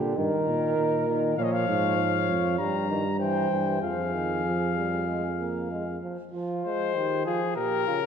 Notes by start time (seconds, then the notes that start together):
Already playing: A#2 D3 G4
0.16 G2 D#3 A#4
0.47 A#2
0.77 A#2
1.07 D#3
1.37 A#2 F3 C#5 F5
1.44 D#5
1.53 F5
1.68 G#2
1.98 C#5
2.29 F2
2.59 G2 G3 A#5
2.89 D#3
3.19 E3 C5 G5
3.50 G2 E3
3.82 F2 F3 G#4 F5
4.14 D#3
4.45 F3
4.77 G3
5.09 G#3
5.40 A#3
5.71 G#3
6.03 F3
6.32 F3 F4
6.63 G#3 C5
6.95 D#3 G4
7.25 F3 F4 G#4
7.56 A#2 G4 A#4
7.87 C#3 F4